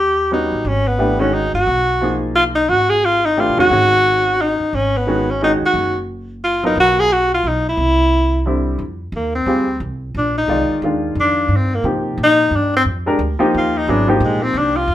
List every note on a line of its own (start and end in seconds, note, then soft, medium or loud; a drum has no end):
0.00 0.48 D#2 medium
0.00 0.33 G4 loud
0.31 0.65 G3 medium
0.31 0.65 B3 medium
0.31 0.66 C#4 medium
0.31 0.69 D#4 medium
0.31 0.66 F#4 medium
0.52 0.64 A1 medium
0.65 1.50 G#1 medium
0.65 0.89 C#4 medium
0.87 1.22 B3 medium
0.98 1.18 E3 medium
0.98 1.18 A3 medium
0.98 1.18 D4 medium
0.98 1.18 G4 medium
1.20 1.50 D#3 medium
1.20 1.50 G#3 medium
1.20 1.35 C#4 medium
1.20 1.50 C#4 medium
1.20 1.51 F#4 medium
1.34 1.54 D#4 medium
1.54 1.66 G1 medium
1.54 2.18 F#4 loud
1.67 2.65 B1 medium
2.01 2.52 F3 medium
2.01 2.52 A#3 medium
2.01 2.53 D#4 medium
2.01 2.53 G#4 medium
2.35 2.45 F4 medium
2.55 2.70 D#4 medium
2.69 3.44 G#1 medium
2.69 2.91 F#4 loud
2.90 3.06 G#4 loud
3.05 3.27 F4 loud
3.25 3.41 D#4 medium
3.37 3.56 E3 medium
3.37 3.56 A3 medium
3.37 3.56 D4 medium
3.37 3.59 F4 medium
3.37 3.56 G4 medium
3.49 3.58 B1 medium
3.57 3.69 D#2 medium
3.57 3.69 D#3 medium
3.57 3.70 G#3 medium
3.57 3.70 C#4 medium
3.57 3.70 F#4 medium
3.57 4.42 F#4 loud
3.70 4.55 G#1 medium
3.70 4.65 D#3 medium
3.70 4.65 G#3 medium
3.70 4.65 C#4 medium
3.70 4.65 F#4 medium
4.41 4.76 D#4 medium
4.60 muted upright bass stroke soft
4.73 5.58 G#1 medium
4.73 4.99 C#4 medium
4.97 5.32 B3 medium
5.07 5.26 D#3 medium
5.07 5.26 G#3 medium
5.07 5.26 C#4 medium
5.07 5.27 F#4 medium
5.31 5.42 C#4 medium
5.42 5.92 D#3 medium
5.42 5.92 G#3 medium
5.42 5.92 C#4 medium
5.42 5.52 D#4 medium
5.42 5.93 F#4 medium
5.62 muted upright bass stroke soft
5.66 6.00 F#4 medium
5.74 6.72 F#1 medium
6.44 6.63 F4 medium
6.63 7.08 F#3 medium
6.63 7.08 B3 medium
6.63 6.77 D#4 medium
6.63 7.08 F4 medium
6.63 7.08 A#4 medium
6.76 7.40 B1 medium
6.76 7.01 F#4 loud
7.00 7.14 G#4 loud
7.12 7.32 F#4 loud
7.34 7.49 F4 medium
7.44 7.75 B1 medium
7.48 7.67 D#4 medium
7.68 8.64 E4 medium
7.77 8.75 C2 medium
8.46 8.80 D3 medium
8.46 8.80 G3 medium
8.46 8.80 C4 medium
8.46 8.80 E4 medium
8.79 9.12 F2 medium
9.12 9.45 D#2 medium
9.16 9.34 A#3 medium
9.35 9.78 C4 medium
9.46 9.79 D2 medium
9.46 9.66 G3 medium
9.46 9.66 C4 medium
9.46 9.66 F4 medium
9.46 9.66 G#4 medium
9.80 10.14 C2 medium
10.14 10.47 A#1 medium
10.14 10.36 D4 medium
10.37 10.80 D#4 medium
10.48 10.68 C2 medium
10.48 10.82 D#3 medium
10.48 10.82 G#3 medium
10.48 10.83 F4 medium
10.48 10.83 D5 medium
10.69 muted upright bass stroke soft
10.82 11.15 D#2 medium
10.82 11.77 D#3 medium
10.82 11.77 G#3 soft
10.82 11.77 D4 soft
10.82 11.77 F4 medium
11.15 11.48 F2 medium
11.20 11.58 D4 medium
11.48 11.82 G2 medium
11.56 11.76 C4 medium
11.74 11.86 A#3 medium
11.84 12.17 C3 medium
11.84 12.78 F3 medium
11.84 12.78 A#3 soft
11.84 12.78 D#4 soft
11.84 12.78 G4 medium
12.18 12.51 A#2 medium
12.23 12.57 D#4 loud
12.51 12.84 G2 medium
12.56 12.75 D4 medium
12.76 12.83 C4 medium
12.85 13.18 F2 medium
13.06 13.18 G#3 medium
13.06 13.18 D4 medium
13.06 13.19 G4 medium
13.06 13.19 A#4 medium
13.19 13.39 D2 medium
13.39 13.84 F3 medium
13.39 13.84 A#3 medium
13.39 13.84 D#4 medium
13.39 13.85 G4 medium
13.39 muted upright bass stroke soft
13.54 13.87 D#2 medium
13.54 13.79 F4 medium
13.77 13.92 D#4 medium
13.87 14.20 G#1 medium
13.87 14.07 F#3 medium
13.87 14.07 B3 medium
13.87 14.10 D4 medium
13.87 14.07 E4 medium
13.87 14.07 G#4 medium
14.08 14.81 F3 medium
14.08 14.26 F3 medium
14.08 14.81 A#3 medium
14.08 14.81 D#4 medium
14.08 14.82 G4 medium
14.20 14.53 A#1 medium
14.24 14.44 G#3 medium
14.42 14.59 C4 medium
14.54 14.87 C2 medium
14.54 14.78 D4 medium
14.76 14.95 F4 loud
14.88 14.95 F2 medium